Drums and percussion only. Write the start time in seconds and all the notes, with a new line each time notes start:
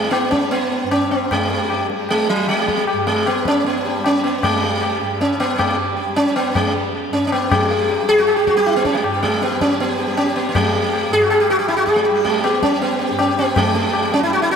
0.13 tabla na
0.32 tabla ke
0.52 tabla te
0.72 tabla te
0.91 tabla na
1.12 tabla na
1.31 tabla na, tabla ge
1.50 tabla te
1.70 tabla na
1.90 tabla te
2.09 tabla na
2.29 tabla te
2.48 tabla na
2.68 tabla ke
2.78 tabla te
2.87 tabla na
3.07 tabla te
3.26 tabla na
3.45 tabla ke
3.65 tabla te
3.85 tabla te
4.04 tabla na
4.23 tabla na
4.43 tabla na, tabla ge
4.63 tabla te
4.82 tabla na
5.01 tabla te
5.21 tabla te
5.40 tabla na
5.59 tabla na, tabla ge
6.17 tabla te
6.36 tabla na
6.55 tabla na, tabla ge
7.13 tabla te
7.32 tabla na
7.51 tabla na, tabla ge
7.71 tabla te
7.90 tabla na
8.09 tabla ke
8.19 tabla te
8.29 tabla na
8.47 tabla ke
8.57 tabla te
8.67 tabla na
8.85 tabla ke
8.95 tabla te
9.04 tabla na
9.23 tabla ke
9.33 tabla te
9.42 tabla te
9.52 tabla te
9.61 tabla ke
9.71 tabla te
9.80 tabla te
9.99 tabla te
10.18 tabla na
10.37 tabla na
10.55 tabla na, tabla ge
10.74 tabla te
10.93 tabla na
11.12 tabla te
11.31 tabla na
11.50 tabla te
11.69 tabla na
11.87 tabla ke
11.97 tabla te
12.06 tabla na
12.25 tabla ke
12.34 tabla te
12.44 tabla na
12.63 tabla ke
12.82 tabla te
13.00 tabla te
13.19 tabla na
13.38 tabla na
13.56 tabla na, tabla ge
13.75 tabla te
13.93 tabla na
14.12 tabla te
14.30 tabla na
14.49 tabla te